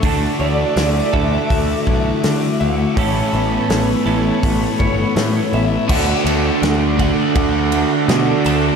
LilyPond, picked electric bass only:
\new Staff \with { instrumentName = "Picked electric bass" } { \clef bass \time 4/4 \key d \major \tempo 4 = 82 d,8 d,8 d,8 d,8 d,8 b,,8 d8 d,8 | a,,8 a,,8 a,,8 a,,8 a,,8 g,,8 a,8 a,,8 | d,8 d,8 d,4 d,4 b,8 d,8 | }